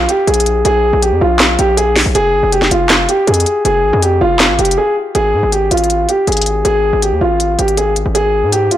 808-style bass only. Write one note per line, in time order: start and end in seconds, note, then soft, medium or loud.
0.27 0.63 A#1 loud
0.65 0.92 A#1 loud
0.93 1.13 A#1 loud
1.12 1.21 F2 loud
1.21 1.57 A#1 loud
1.59 2.04 A#1 loud
2.06 2.15 A#1 loud
2.15 2.35 F1 loud
2.34 2.43 G1 loud
2.43 2.70 F1 loud
2.71 3.07 F1 loud
3.27 3.45 F2 loud
3.65 3.85 F1 loud
3.84 3.93 G#1 loud
3.93 4.20 F2 loud
4.21 4.51 F1 loud
4.49 4.58 G#1 loud
4.59 4.78 F1 loud
5.15 5.35 G#1 loud
5.34 5.43 G#2 medium
5.43 5.70 G#1 loud
5.71 6.07 G#1 loud
6.27 6.63 G#1 loud
6.65 6.92 G#1 loud
6.93 7.13 G#1 loud
7.12 7.21 D#2 loud
7.21 7.57 G#1 loud
7.59 8.04 G#1 loud
8.06 8.45 G#1 loud
8.43 8.70 G#2 loud